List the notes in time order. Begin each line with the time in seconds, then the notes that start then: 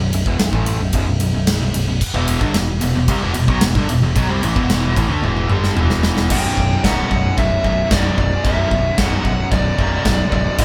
0.00 B0 B1 F#2
0.13 B0 B1 F#2, ride
0.26 E1 E2 B2, kick
0.39 B0 B1 F#2, snare, ride
0.53 A1 A2 E3 A3, kick
0.66 ride
0.80 B0 B1 F#2
0.93 B0 B1 F#2, kick, ride
1.07 B0 B1 F#2
1.20 B0 B1 F#2, ride
1.33 B0 B1 F#2
1.47 snare, ride
1.61 B0 B1 F#2
1.74 B0 B1 F#2, ride
1.88 B0 B1 F#2
2.01 kick, crash
2.14 E1 E2 B2 E3, kick
2.28 ride
2.41 G1 G2 D3, kick
2.54 E1 E2 B2, snare, ride
2.81 E1 E2 B2, ride
2.94 E1 E2 B2
3.08 C2 C3 G3, kick, ride
3.22 E1 E2 B2
3.34 E1 E2 B2, ride
3.47 B1 B2 F#3, kick
3.61 E1 E2 B2, snare, ride
3.75 G1 G2 D3, kick
3.88 E1 E2 B2, ride
4.02 E1 E2 B2
4.15 B1 B2 F#3, kick, ride
4.28 C2 C3 G3
4.42 A1 A2 E3, ride
4.55 E1 E2 B2 E3, kick
4.70 snare, ride
4.95 A1 A2 E3, kick, ride
5.08 D2 D3 A3
5.22 E1 E2 B2 E3, high tom
5.37 high tom
5.48 G1 G2 D3 G3, mid tom
5.64 snare
5.75 E1 E2 B2 E3, mid tom
5.90 snare
6.03 snare
6.17 snare
6.30 B0 B1 F#2 B2 G5, kick, crash, china
6.38 B1 F#2
6.45 B1 F#2
6.52 B1 F#2
6.57 B0 B1, kick
6.61 F#2
6.67 B1 F#2
6.75 B1 F#2
6.83 B0 B1 F#2 B2 F#5, kick, snare, china
6.90 B1 F#2
6.98 B1 F#2
7.07 B1 F#2
7.11 B0 B1 F#2, kick
7.21 B1 F#2
7.29 B1 F#2
7.36 B0 B1 F#2 E5, kick, china
7.45 B1 F#2
7.52 B1 F#2
7.59 B1 F#2
7.64 B0 B1 F#2, kick
7.74 B1 F#2
7.83 B1 F#2
7.90 B0 B1 F#2 B2 D5, kick, snare, china
7.98 B1 F#2
8.05 B1 F#2
8.12 B1 F#2
8.18 B0 B1 F#2 D5, kick
8.28 B1 F#2
8.36 B1 F#2
8.44 B0 B1 F#2 B2 E5, kick, china
8.52 B1 F#2
8.59 B1 F#2
8.67 B0 B1 F#2, kick
8.75 B1 F#2
8.82 B1 F#2
8.91 B1 F#2
8.98 B0 B1 F#2 B2 F#5, kick, snare, china
9.05 B1 F#2
9.13 B1 F#2
9.21 B0 B1 F#2
9.25 B1 F#2, kick
9.35 B1 F#2
9.43 B1 F#2
9.51 B0 B1 F#2 D5, kick, china
9.60 B1 F#2
9.67 B1 F#2
9.75 B0 B1 F#2, kick
9.80 B1 F#2 B2
9.90 B1 F#2
9.98 B1 F#2
10.05 B0 B1 F#2, kick, snare, china
10.13 B1 F#2
10.21 B1 F#2
10.28 C#1 B1 F#2 D5
10.32 B1 F#2, kick
10.43 B1 F#2
10.51 B1 F#2
10.58 D1 D2 A2 D3 E5, kick, crash, china